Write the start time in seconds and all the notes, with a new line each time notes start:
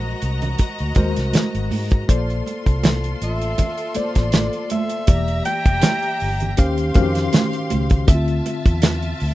Already playing: A#1 G#3 F#4 A#4 C5 D#5 A#5
0.22 C2, closed hi-hat
0.42 closed hi-hat, low conga
0.58 kick, closed hi-hat, muted conga
0.79 D2, closed hi-hat
0.95 D#2 G#3 F#4 A#4 C5, kick, closed hi-hat, muted conga
1.16 C2, snare, closed hi-hat
1.33 muted fingered electric bass stroke, snare, closed hi-hat, high conga
1.55 G#1, closed hi-hat
1.71 G#2, open hi-hat, high conga
1.91 kick, closed hi-hat
2.08 A#1 A#3 F4 A4 C5 D5 C6, kick, closed hi-hat
2.30 closed hi-hat
2.47 closed hi-hat, muted conga
2.66 C2, kick, closed hi-hat
2.83 snare, closed hi-hat, high conga
3.04 closed hi-hat
3.22 A1 E5, closed hi-hat
3.41 closed hi-hat
3.58 kick, closed hi-hat, muted conga, low conga
3.78 closed hi-hat
3.94 A#3 A4 C5 D5, muted fingered electric bass stroke, closed hi-hat, muted conga
4.15 A1, kick, snare, closed hi-hat
4.32 D5, snare, closed hi-hat, high conga
4.53 closed hi-hat
4.70 E5, closed hi-hat, high conga
4.89 closed hi-hat
5.07 E1 E3 A#3 G4 D5 E5 A#5, kick, closed hi-hat
5.28 closed hi-hat
5.45 G5, closed hi-hat, muted conga
5.66 F1, kick, closed hi-hat
5.82 snare, closed hi-hat, high conga
6.02 closed hi-hat
6.20 G1, open hi-hat
6.40 closed hi-hat, low conga
6.57 D#2 D#3 C#4 G4 C5 F5 C6, kick, closed hi-hat
6.78 closed hi-hat
6.94 F2 D#3 C#4 F#4 C5 F5, kick, closed hi-hat, muted conga
7.02 G4
7.15 snare, closed hi-hat
7.33 snare, closed hi-hat, high conga
7.53 closed hi-hat
7.70 C#2, closed hi-hat, high conga
7.90 kick, closed hi-hat
8.07 D2 D3 C4 E4 F4 E5 A5, kick, closed hi-hat
8.14 F4
8.28 closed hi-hat
8.46 closed hi-hat, muted conga
8.66 E2, kick, closed hi-hat
8.82 snare, closed hi-hat, high conga
9.02 closed hi-hat
9.20 D2, open hi-hat